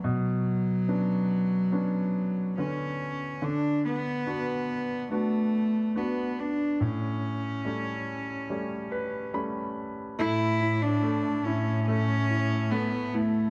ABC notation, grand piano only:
X:1
M:4/4
L:1/8
Q:1/4=71
K:Amix
V:1 name="Grand piano"
z8 | z8 | z4 z B b2 | z8 |]
V:2 name="Grand piano"
B,,2 [B,CD]2 [B,CD]2 [D,B,C]2 | D,2 [B,DF]2 [B,DF]2 [B,DF]2 | A,,2 [G,A,C]2 [G,A,C]2 [G,A,C]2 | A, E A, E A, E A, E |]